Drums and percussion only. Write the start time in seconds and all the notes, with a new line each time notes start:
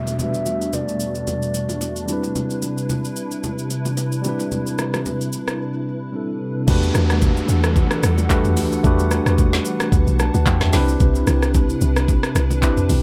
0.07 high bongo, shaker
0.19 low conga, shaker
0.34 shaker
0.46 low bongo, shaker
0.62 shaker
0.73 high bongo, low conga, shaker
0.89 shaker
1.00 shaker
1.15 shaker
1.27 low conga, shaker
1.42 shaker
1.54 high bongo, shaker
1.69 low bongo, shaker
1.81 high bongo, shaker
1.96 shaker
2.08 low bongo, shaker
2.23 high bongo, shaker
2.35 low conga, shaker
2.50 shaker
2.62 low bongo, shaker
2.78 shaker
2.89 high bongo, low conga, shaker
3.05 shaker
3.16 shaker
3.31 shaker
3.44 low conga, shaker
3.59 shaker
3.70 high bongo, shaker
3.85 low bongo, shaker
3.97 high bongo, shaker
4.12 shaker
4.24 low bongo, shaker
4.39 high bongo, shaker
4.52 low conga, shaker
4.67 shaker
4.78 cross-stick, low bongo, shaker
4.94 cross-stick, low bongo, shaker
5.06 high bongo, low conga, shaker
5.21 shaker
5.33 shaker
5.48 cross-stick, shaker
6.68 kick, crash, low conga, shaker
6.83 shaker
6.95 cross-stick, low bongo, shaker
7.10 cross-stick, shaker
7.22 kick, high bongo, low conga, shaker
7.37 shaker
7.49 shaker
7.64 cross-stick, shaker
7.76 kick, low conga, shaker
7.91 cross-stick, shaker
8.03 cross-stick, high bongo, shaker
8.18 low bongo, shaker
8.30 kick, clap, high bongo, shaker
8.45 mid tom, shaker
8.57 open hi-hat, low bongo, shaker
8.72 high bongo, shaker
8.84 kick, low conga, shaker
8.99 shaker
9.11 cross-stick, low bongo, shaker
9.26 cross-stick, shaker
9.38 kick, high bongo, low conga, shaker
9.53 snare, shaker
9.65 shaker
9.80 cross-stick, shaker
9.92 kick, low conga, shaker
10.07 shaker
10.19 cross-stick, high bongo, shaker
10.34 low bongo, shaker
10.46 kick, clap, high bongo, shaker
10.61 cross-stick, snare, mid tom, shaker
10.73 snare, open hi-hat, low bongo, shaker
10.88 high bongo, shaker
11.00 kick, low conga, shaker
11.15 shaker
11.27 cross-stick, low bongo, shaker
11.42 cross-stick, shaker
11.54 kick, high bongo, low conga, shaker
11.70 shaker
11.81 shaker
11.96 cross-stick, shaker
12.08 kick, low conga, shaker
12.23 cross-stick, shaker
12.35 cross-stick, high bongo, shaker
12.50 low bongo, shaker
12.62 kick, clap, high bongo, shaker
12.77 mid tom, shaker
12.89 open hi-hat, low bongo, shaker